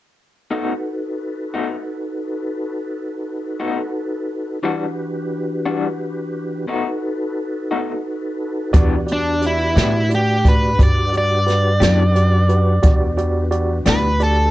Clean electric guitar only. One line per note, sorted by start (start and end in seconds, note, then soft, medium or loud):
0.51 0.72 B2 medium
0.51 0.72 A3 medium
0.51 0.72 D#4 medium
0.51 0.73 F#4 medium
1.54 1.76 B2 soft
1.54 1.76 A3 soft
1.54 1.75 D#4 medium
1.54 1.75 F#4 soft
3.60 3.81 B2 soft
3.60 3.81 A3 soft
3.60 3.81 D#4 medium
3.60 3.81 F#4 soft
4.63 4.84 E3 medium
4.63 4.84 G3 medium
4.63 4.84 D4 medium
4.63 4.84 F#4 medium
5.65 5.87 E3 soft
5.65 5.87 G3 soft
5.65 5.86 D4 medium
5.65 5.86 F#4 medium
6.68 6.89 B2 medium
6.68 6.89 A3 medium
6.68 6.89 D#4 medium
6.68 6.89 F#4 medium
7.71 7.92 B2 soft
7.71 7.92 A3 soft
7.71 7.92 D#4 soft
7.71 7.92 F#4 soft
8.74 8.94 E3 medium
8.74 8.94 B3 medium
8.74 8.95 D4 medium
8.74 8.95 G4 medium
9.76 9.97 E3 soft
9.76 9.97 B3 medium
9.76 9.97 D4 medium
9.76 9.97 G4 medium
11.80 12.02 E3 soft
11.80 12.02 B3 soft
11.80 12.02 D4 soft
11.80 12.01 G4 medium
13.86 14.07 E3 soft
13.86 14.07 B3 medium
13.86 14.07 D4 medium
13.86 14.06 G4 medium